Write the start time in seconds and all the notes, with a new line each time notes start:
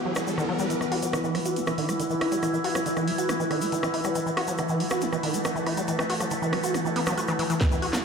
Already playing: E3 B3 E4 B4 F#5, riser
0.05 F#3
0.15 G3, cross-stick, shaker
0.27 G3, shaker
0.38 D#3, cross-stick, shaker
0.49 F#3
0.59 G3, shaker
0.70 E3 E4, closed hi-hat, shaker
0.81 E3, cross-stick, shaker
0.92 F#4, open hi-hat
1.02 F#3, closed hi-hat, shaker
1.13 D#3, cross-stick, closed hi-hat, shaker
1.24 E3, shaker
1.35 G3, cross-stick, open hi-hat
1.45 F#4, closed hi-hat, shaker
1.56 F#3, closed hi-hat, shaker
1.67 E3, cross-stick, shaker
1.78 D#3, open hi-hat
1.89 B3, cross-stick, closed hi-hat, shaker
2.00 D#3, closed hi-hat, shaker
2.10 E3, shaker
2.21 E4, cross-stick, open hi-hat
2.32 G3, closed hi-hat, shaker
2.43 E3, cross-stick, closed hi-hat, shaker
2.54 E3, shaker
2.64 F#4, open hi-hat
2.75 F#3, cross-stick, closed hi-hat, shaker
2.86 D#3, closed hi-hat, shaker
2.96 E3, cross-stick, shaker
3.07 G3, open hi-hat
3.18 F#4, closed hi-hat, shaker
3.29 F#3, cross-stick, closed hi-hat, shaker
3.40 E3, shaker
3.51 D#3, cross-stick, open hi-hat
3.61 B3, open hi-hat, shaker
3.72 D#3, closed hi-hat, shaker
3.83 E3, cross-stick, shaker
3.94 E4, open hi-hat
4.04 G3, cross-stick, closed hi-hat, shaker
4.15 E3 A3, closed hi-hat, shaker
4.26 E3, shaker
4.37 F#4, cross-stick, open hi-hat
4.48 F#3, closed hi-hat, shaker
4.58 D#3, cross-stick, closed hi-hat, shaker
4.69 E3, shaker
4.80 G3, open hi-hat
4.90 F#4, cross-stick, closed hi-hat, shaker
5.01 F#3, closed hi-hat, shaker
5.12 E3, cross-stick, shaker
5.23 D#3, open hi-hat
5.34 B3, closed hi-hat, shaker
5.45 D#3, cross-stick, closed hi-hat, shaker
5.56 E3, shaker
5.66 E4, cross-stick, open hi-hat
5.77 G3, closed hi-hat, shaker
5.88 E3, closed hi-hat, shaker
5.99 E3, cross-stick, shaker
6.10 F#4, open hi-hat
6.20 F#3, cross-stick, closed hi-hat, shaker
6.31 D#3, closed hi-hat, shaker
6.42 E3, shaker
6.53 G3, cross-stick, open hi-hat
6.64 F#4, closed hi-hat, shaker
6.74 F#3, cross-stick, closed hi-hat, shaker
6.85 E3, shaker
6.96 B3, open hi-hat
7.06 F#3, cross-stick, open hi-hat, shaker
7.18 F#4, closed hi-hat, shaker
7.28 E3, cross-stick, shaker
7.39 E3, open hi-hat
7.50 E3, closed hi-hat, shaker
7.61 E3 E4, kick, snare, closed hi-hat, riser, shaker
7.71 E3, shaker
7.82 F#4, open hi-hat
7.93 F#3, snare, closed hi-hat, shaker